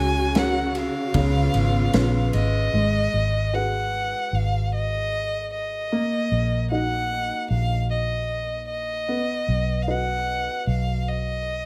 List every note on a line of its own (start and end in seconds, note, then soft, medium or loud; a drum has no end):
0.00 0.88 C#2 loud
0.00 1.10 C#3 medium
0.00 2.71 C#3 medium
0.00 1.13 F#4 medium
0.00 0.39 G#5 medium
0.35 1.12 C#4 medium
0.35 1.12 F#4 soft
0.35 1.12 A#4 medium
0.35 0.76 F#5 medium
0.35 snare medium
0.35 ride medium
0.75 2.31 F5 medium
0.75 ride soft
1.14 1.47 C#2 medium
1.14 2.70 C#3 medium
1.14 2.72 B3 medium
1.14 2.73 F4 medium
1.14 kick medium
1.14 ride medium
1.54 1.87 G#1 medium
1.54 ride soft
1.93 2.30 A#1 medium
1.93 2.71 C#4 soft
1.93 2.71 F4 soft
1.93 2.72 B4 medium
1.93 snare medium
1.93 ride medium
2.33 2.70 G#1 medium
2.33 3.56 D#5 loud
2.33 ride medium
2.73 3.06 G#1 medium
2.73 5.88 G#3 soft
3.14 4.13 G#1 medium
3.53 5.88 F#4 soft
3.53 5.88 G#4 soft
3.53 5.88 B4 soft
3.53 4.35 F#5 medium
4.33 5.91 G#1 medium
4.33 4.73 F5 medium
4.75 5.49 D#5 medium
5.53 6.68 D#5 medium
5.91 6.25 A#1 medium
5.91 9.05 A#3 medium
6.31 7.31 A#1 medium
6.71 9.05 D#4 soft
6.71 9.05 F#4 soft
6.71 9.06 D#5 soft
6.71 7.47 F#5 medium
7.50 9.09 A#1 medium
7.50 7.87 F5 medium
7.90 8.66 D#5 medium
8.69 9.84 D#5 medium
9.08 9.42 B1 medium
9.08 11.65 B3 medium
9.48 10.47 B1 medium
9.82 9.92 F5 medium
9.88 11.65 F#4 soft
9.88 11.65 B4 soft
9.88 11.65 D#5 soft
9.88 10.68 F#5 medium
10.67 11.65 B1 medium
10.67 11.10 F5 medium
11.08 11.65 D#5 medium